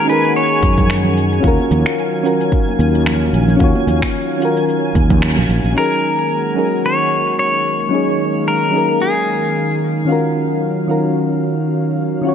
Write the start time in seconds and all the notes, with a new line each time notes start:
Already playing: D#3 G#3 A#3 C#4 D#4 F#4 G#4 C#5 G#5 G#6
0.05 C#4 D#4, shaker
0.10 G#4 A#4 B4
0.24 shaker
0.36 C#5, shaker
0.63 F#2, kick, shaker
0.78 kick, low conga, shaker
0.90 finger snap, shaker
1.04 low conga
1.17 shaker
1.32 shaker
1.40 D#2 D#3 F#3 C#4 F4 F5, kick, shaker
1.45 F#4 A#4
1.60 high conga
1.71 D#2, low conga, shaker
1.86 finger snap, shaker
1.99 shaker
2.23 C#4 F4 F#4 A#4, shaker
2.41 shaker
2.52 kick, shaker
2.68 high conga
2.79 D#2, shaker
2.95 shaker
3.06 finger snap, low conga, shaker
3.33 A#1, shaker
3.48 low conga, shaker
3.57 D#2 C#4 F4, kick
3.61 F#4 C#5, shaker
3.75 high conga
3.87 D#2, low conga, shaker
4.02 finger snap, kick, high conga, shaker
4.15 shaker
4.38 C#4 F4, shaker
4.43 F#4 A#4
4.57 shaker
4.69 shaker
4.95 D#2, kick, shaker
5.10 kick, low conga, shaker
5.22 finger snap, shaker
5.37 A#1, low conga
5.49 A#1, shaker
5.64 A#1, shaker
5.72 D#3 F#3 G#3 A#3 C#4 D#4 F#4
5.78 G#4 A#4
6.55 F#3 C#4 D#4 G#4 A#4
6.86 C#5
7.39 C#5
7.89 F#3 C#4 D#4 F5
7.94 G#4 C#5
8.48 A#4
8.70 F#3 C#4 D#4
8.75 G#4 A#4
9.02 G#4
10.05 D#3 F#3 C#4 F4
10.10 F#4 A#4
10.88 D#3 C#4 F4 F#4 A#4
12.22 D#3 C#4 F4
12.27 F#4 C#5